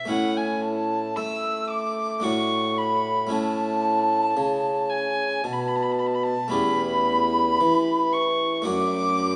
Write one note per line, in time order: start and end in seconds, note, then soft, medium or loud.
0.05 1.16 A3 soft
0.05 2.19 C#4 soft
0.05 2.20 E4 soft
0.10 1.13 A2 soft
0.10 1.13 A2 medium
0.10 0.38 F#5 medium
0.10 0.39 F#5 medium
0.37 0.63 G#5 medium
0.37 0.66 G#5 medium
0.63 1.18 A5 medium
1.16 2.19 A3 soft
1.16 2.22 A3 medium
1.16 1.69 E6 medium
1.16 1.72 E6 medium
1.70 2.25 D6 medium
1.70 2.26 D6 medium
2.20 3.25 A3 soft
2.20 3.26 D4 soft
2.20 3.27 F#4 soft
2.20 2.79 C#6 medium
2.24 3.27 A2 soft
2.24 3.29 A2 medium
2.24 2.79 C#6 medium
2.78 3.30 B5 medium
2.78 3.32 B5 medium
3.27 6.46 A3 soft
3.27 6.47 C#4 soft
3.27 6.48 E4 soft
3.31 4.35 A2 medium
3.31 4.33 A2 soft
3.31 4.91 A5 medium
3.31 4.87 A5 medium
4.37 5.39 C#3 soft
4.37 5.41 C#3 medium
4.90 5.45 G#5 medium
4.90 5.46 G#5 medium
5.44 6.36 B2 medium
5.44 6.49 B2 soft
5.44 5.54 A5 medium
5.44 6.25 A5 medium
5.53 5.62 B5 medium
5.60 5.69 A5 medium
5.68 5.77 B5 medium
5.76 5.84 A5 medium
5.83 5.93 B5 medium
5.92 6.01 A5 medium
5.99 6.08 B5 medium
6.07 6.16 A5 medium
6.14 6.25 B5 medium
6.23 6.51 A5 medium
6.48 8.60 A3 soft
6.48 8.61 C#4 soft
6.48 8.62 G4 soft
6.48 8.14 B5 loud
6.52 7.56 E2 medium
6.52 8.16 B5 loud
7.60 8.64 E3 medium
7.60 8.62 E3 medium
8.13 8.68 C#6 medium
8.13 8.66 C#6 medium
8.62 9.36 F#2 medium
8.62 9.36 A3 soft
8.62 9.36 D4 medium
8.62 9.36 F#4 medium
8.62 9.36 D6 loud
8.66 9.36 F#2 medium
8.66 9.36 D6 medium